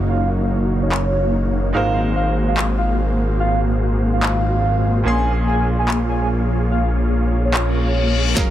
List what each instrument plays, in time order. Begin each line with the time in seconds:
Already playing: analog synth bass F#1, grand piano F#3 D#4 A#4 C#5 F5, supersaw synth A#3 D#4 F#4 C#5 F5
0.09 soft synth lead F5
0.82 soft synth lead C#5
0.92 clap
1.73 analog synth bass G#1, grand piano G#3 D#4 F#4 A#4 C5 F5, supersaw synth A#3 F#4 G#4 C5 F5, soft synth lead F5
2.16 soft synth lead F5
2.48 soft synth lead F5
2.57 clap
2.78 soft synth lead F5
3.40 soft synth lead F5
4.14 soft synth lead F5
4.23 clap
5.04 analog synth bass A#1, grand piano A#2 A#3 C#4 G#4, supersaw synth A#3 F4 G#4 C#5 F5, soft synth lead G#5
5.08 grand piano C6
5.47 soft synth lead G#5
5.79 soft synth lead G#5
5.88 clap
6.09 soft synth lead G#5
6.71 soft synth lead F5
7.45 soft synth lead C#5
7.54 clap, reverse cymbal
8.35 analog synth bass F#1, grand piano F#3 C#4 G#4 F5, supersaw synth A#3 F4 F#4 C#5 F5, kick, snare, closed hi-hat, riser
8.39 grand piano A#4